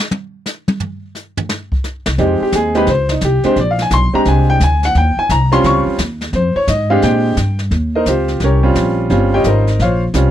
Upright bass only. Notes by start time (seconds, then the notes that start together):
2.07 C2
2.18 F2
2.41 muted upright bass stroke
2.52 D#2
2.87 C#2
3.21 C2
3.44 muted upright bass stroke
3.56 A#1
3.91 B1
4.14 muted upright bass stroke
4.26 C2
4.60 D2
4.95 D#2
5.17 muted upright bass stroke
5.29 C2
5.64 C#2
5.86 muted upright bass stroke
5.98 D#2
6.33 F2
6.55 muted upright bass stroke
6.67 G#2
7.02 A#2
7.37 G2
7.71 D#2
8.06 C#2
8.40 C2
8.75 A#1
9.10 G1
9.44 G#1
9.79 A#1
10.14 C2